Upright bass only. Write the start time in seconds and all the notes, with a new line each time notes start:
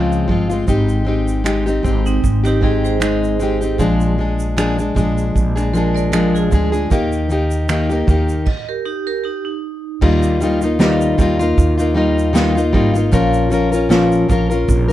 Already playing: C#2
0.29 G1
0.68 G#1
1.85 G#1
2.24 G#1
3.80 A#1
4.96 A#1
5.36 A#1
6.52 D2
6.91 D#2
8.08 D#2
10.02 D#2
11.19 D#2
11.58 D#2
12.74 G#1
13.13 A#1
14.29 A#1
14.69 A#1